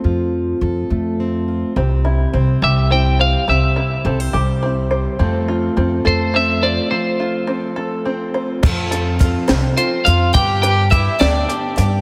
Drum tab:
CC |------|------|------|------|
HH |------|------|------|------|
SD |------|------|------|------|
BD |------|------|------|------|

CC |------|x-----|------|
HH |------|-xxxxx|xxxxxx|
SD |------|---o--|---o--|
BD |------|o-o---|o-o---|